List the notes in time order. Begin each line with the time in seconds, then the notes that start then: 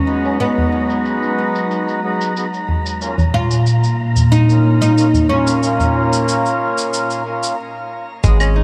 Already playing: F#3 G#3 C#4 D#4 B4 A#5
0.06 G#3 B3 D#4 F#4 B4
0.25 tabla na, tabla tin, shaker
0.38 G#3 B3 D#4 F#4 B4, shaker
0.57 tabla tin, tabla ge, shaker
0.74 tabla na
0.90 tabla tin, shaker
1.05 shaker
1.23 shaker
1.55 shaker
1.71 shaker
1.88 shaker
2.03 G#3 B3 D#4 F#4 B4, tabla tin
2.21 shaker
2.36 G#3 B3 D#4 F#4 B4, shaker
2.54 tabla tin, shaker
2.69 tabla ge
2.85 tabla tin, shaker
3.01 A#2 A#3 C#4 F4, tabla na, shaker
3.18 tabla tin, tabla ge, shaker
3.25 A#3
3.34 F4, tabla na
3.50 tabla na, tabla tin, shaker
3.66 shaker
3.83 shaker
3.89 C#5
4.16 tabla ge, shaker
4.32 D#4, shaker
4.48 A#3 C#4 F4, tabla tin, shaker
4.82 D#4, shaker
4.91 F4
4.96 A#3 C#4 F4, shaker
5.14 tabla ge, shaker
5.29 A#3 C#4 F4
5.47 tabla na, tabla tin, shaker
5.61 A#3 C#4 F4, shaker
5.79 tabla tin, tabla ge, shaker
5.94 tabla na
6.13 shaker
6.28 shaker
6.45 shaker
6.78 shaker
6.93 shaker
7.10 shaker
7.25 A#3 C#4 F4, tabla tin
7.43 shaker
8.23 G#1 F#3 G#3 B3 D#4 G#4, kick, shaker
8.40 C#4, claves, shaker
8.56 D#4